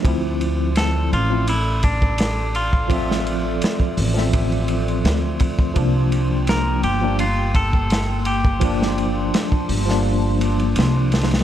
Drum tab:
RD |x---x---x---x---x---x---x---x---|x---x---x-------x-x-x-x-x---x---|x---x---x---x---x---x---x---x---|x---x---x-----------x-x-x---xxxx|
HH |--------------------------------|------------o-------------------|--------------------------------|------------o-------------------|
SD |--------o---------------o-------|--o-----o-----o---------o-------|--------o---------------o-------|--o-----o-----o---------o---ooo-|
BD |o-------------------o-o-------o-|o---------o-----o-----------o-o-|o-------------------o-o-------o-|o---------o---------------------|